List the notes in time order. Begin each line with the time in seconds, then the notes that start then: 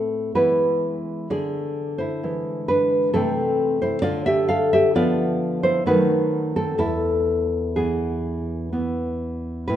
Already playing: A2 A3 C4 A4
0.35 E3 G#3 B3 E4 B4
1.30 D3 G#4 D5
1.98 E4 C5
2.23 E3 G#3
2.68 D4 B4
3.13 C3 E3 A3 C4 A4
3.82 E4 C5
4.02 D3 F4 D5
4.26 G4 E5
4.48 A4 F5
4.73 G4 E5
4.95 F3 B3 F4 D5
5.63 E4 C5
5.86 D#3 F#3 A3 D#4 B4
6.56 C4 A4
6.78 E2 E4 A4
7.76 E3 B3 G#4
8.73 E3 B3
9.68 A2 E4 B4